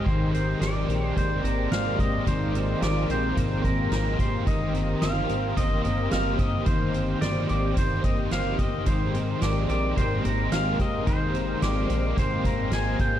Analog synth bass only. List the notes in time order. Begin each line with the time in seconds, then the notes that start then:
0.06 G#1
0.61 G#1
0.89 A#1
1.17 G#1
1.44 G#1
1.71 G#1
1.99 G#1
2.27 G#1
2.82 G#1
3.09 A#1
3.37 G#1
3.64 G#1
3.92 G#1
4.19 G#1
4.47 G1
5.02 G1
5.30 G#1
5.57 G1
5.85 G1
6.12 G1
6.39 G1
6.67 G1
7.22 G1
7.50 G#1
7.77 G1
8.04 G1
8.32 G1
8.59 G1
8.87 G#1
9.42 G#1
9.69 A#1
9.97 G#1
10.25 G#1
10.53 G#1
10.79 G#1
11.07 G#1
11.62 G#1
11.90 A#1
12.17 G#1
12.45 G#1
12.71 G#1
12.99 G#1